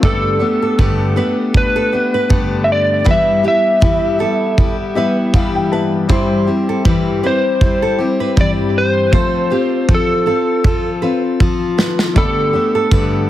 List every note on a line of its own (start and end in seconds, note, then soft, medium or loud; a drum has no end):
0.01 0.41 G2 medium
0.01 0.41 D3 medium
0.01 3.01 A3 medium
0.01 0.40 A3 medium
0.01 0.40 B3 medium
0.01 3.02 D4 medium
0.01 0.39 D4 medium
0.01 0.38 G4 medium
0.01 3.03 G4 medium
0.01 1.57 A4 medium
0.01 0.39 D5 medium
0.01 kick loud
0.05 3.04 B4 medium
0.39 0.78 A3 soft
0.39 0.78 B3 soft
0.39 0.78 D4 soft
0.39 0.78 G4 soft
0.62 0.78 A4 medium
0.78 1.17 G2 medium
0.78 1.17 D3 medium
0.78 1.17 A3 medium
0.78 1.16 B3 medium
0.78 1.15 D4 medium
0.78 1.15 G4 medium
0.78 1.15 B4 medium
0.78 kick loud
1.16 1.53 A3 soft
1.16 1.54 B3 soft
1.16 1.54 D4 medium
1.16 1.54 G4 medium
1.16 1.37 B4 medium
1.54 1.92 A3 medium
1.54 1.93 B3 medium
1.54 1.92 D4 medium
1.54 1.91 G4 medium
1.54 2.67 B4 medium
1.54 kick loud
1.76 1.92 A4 medium
1.93 2.29 A3 soft
1.93 2.29 B3 soft
1.93 2.29 D4 soft
1.93 2.29 G4 medium
2.14 2.30 B4 medium
2.29 3.03 G2 medium
2.29 3.05 D3 medium
2.29 3.05 A3 medium
2.29 3.05 B3 medium
2.29 3.05 D4 medium
2.29 3.05 G4 medium
2.29 kick loud
2.64 2.69 E5 medium
2.72 3.09 D5 medium
3.04 3.43 G2 medium
3.04 3.44 E3 medium
3.04 5.67 G3 medium
3.04 3.44 G3 medium
3.04 3.43 B3 medium
3.04 5.67 B3 medium
3.04 3.43 E4 medium
3.04 5.68 E4 medium
3.04 3.42 G4 medium
3.04 3.42 B4 medium
3.04 kick medium
3.08 5.69 B4 medium
3.08 3.47 E5 loud
3.43 3.80 G3 soft
3.43 3.80 B3 soft
3.43 3.81 E4 soft
3.43 3.81 G4 medium
3.43 3.80 G4 medium
3.48 5.70 E5 medium
3.80 4.19 G2 medium
3.80 4.20 E3 medium
3.80 4.20 G3 medium
3.80 4.20 B3 medium
3.80 4.18 E4 medium
3.80 4.18 G4 medium
3.80 kick loud
4.19 4.57 G3 soft
4.19 4.57 B3 soft
4.19 4.58 E4 soft
4.19 4.57 G4 soft
4.19 4.75 A4 medium
4.58 4.96 G3 medium
4.58 4.95 B3 medium
4.58 4.95 E4 medium
4.58 4.94 G4 medium
4.58 kick loud
4.95 5.34 G3 soft
4.95 5.34 B3 medium
4.95 5.34 E4 medium
4.95 5.34 G4 medium
4.95 5.17 B4 medium
4.95 5.31 E5 medium
5.34 6.08 G2 medium
5.34 6.09 E3 medium
5.34 6.09 G3 medium
5.34 6.09 B3 medium
5.34 6.09 E4 medium
5.34 6.09 G4 medium
5.34 5.53 F5 medium
5.34 kick loud
5.55 5.71 G5 medium
5.71 6.06 G3 medium
5.71 6.09 B3 soft
5.71 6.09 E4 medium
5.71 5.92 B4 medium
5.71 6.10 B4 medium
5.71 6.07 A5 medium
6.08 6.47 G2 medium
6.08 6.47 E3 medium
6.08 9.08 G3 medium
6.08 6.47 G3 medium
6.08 9.09 C4 medium
6.08 6.47 C4 medium
6.08 6.46 E4 loud
6.08 9.09 E4 medium
6.08 6.46 G4 loud
6.08 6.46 C5 medium
6.08 kick medium
6.12 9.10 C5 medium
6.47 6.85 G3 soft
6.47 6.84 C4 medium
6.47 6.85 E4 medium
6.47 6.85 G4 medium
6.69 6.85 A4 medium
6.85 7.23 G2 medium
6.85 7.23 E3 medium
6.85 7.24 G3 medium
6.85 7.24 C4 medium
6.85 7.23 E4 medium
6.85 7.22 G4 medium
6.85 7.22 B4 medium
6.85 kick loud
7.23 7.61 G3 soft
7.23 7.61 C4 soft
7.23 7.62 E4 soft
7.23 7.61 G4 medium
7.23 7.43 B4 medium
7.23 8.42 C5 medium
7.61 7.99 G3 medium
7.61 7.99 C4 medium
7.61 7.99 E4 medium
7.61 7.97 G4 medium
7.61 kick loud
7.82 7.98 A4 medium
7.99 8.36 G3 soft
7.99 8.37 C4 soft
7.99 8.37 E4 soft
7.99 8.37 G4 medium
8.20 8.36 B4 medium
8.36 9.13 G2 medium
8.36 9.13 E3 medium
8.36 9.12 G3 medium
8.36 9.12 C4 medium
8.36 9.13 E4 medium
8.36 9.13 G4 medium
8.36 kick loud
8.41 8.50 D5 medium
8.78 9.94 C5 medium
9.11 9.50 F3 medium
9.11 12.11 A3 medium
9.11 12.12 C4 medium
9.11 9.51 C4 medium
9.11 9.51 F4 medium
9.11 12.13 F4 medium
9.11 9.49 A4 medium
9.11 9.49 C5 medium
9.11 12.13 C5 medium
9.11 kick loud
9.50 9.88 C4 soft
9.50 9.89 F4 soft
9.50 9.87 G4 medium
9.50 9.88 A4 medium
9.89 10.27 F3 medium
9.89 10.27 C4 medium
9.89 10.26 F4 medium
9.89 10.25 A4 medium
9.89 kick loud
9.94 11.01 A4 medium
10.26 10.64 C4 soft
10.26 10.65 F4 soft
10.26 10.64 A4 soft
10.26 10.82 A4 medium
10.64 11.02 F3 medium
10.64 11.03 C4 medium
10.64 11.02 F4 medium
10.64 11.01 A4 medium
10.64 kick loud
11.02 11.39 C4 soft
11.02 11.40 F4 soft
11.02 11.40 A4 medium
11.02 11.22 B4 medium
11.40 12.16 F3 medium
11.40 12.16 C4 medium
11.40 12.17 F4 medium
11.40 12.17 A4 medium
11.40 kick loud
11.78 11.98 B4 medium
11.78 snare medium
11.99 snare medium
12.14 12.54 G2 medium
12.14 12.54 D3 medium
12.14 13.30 A3 medium
12.14 12.54 A3 medium
12.14 12.54 B3 medium
12.14 13.30 D4 medium
12.14 12.53 D4 medium
12.14 13.30 G4 medium
12.14 12.52 D5 medium
12.14 kick loud
12.18 12.52 G4 medium
12.18 13.30 A4 medium
12.18 13.30 B5 medium
12.53 12.90 A3 soft
12.53 12.91 B3 soft
12.53 12.91 D4 medium
12.53 12.91 G4 medium
12.75 12.91 A4 medium
12.91 13.29 G2 medium
12.91 13.29 D3 medium
12.91 13.29 A3 medium
12.91 13.29 B3 medium
12.91 13.28 D4 medium
12.91 13.28 G4 medium
12.91 13.27 B4 medium
12.91 kick loud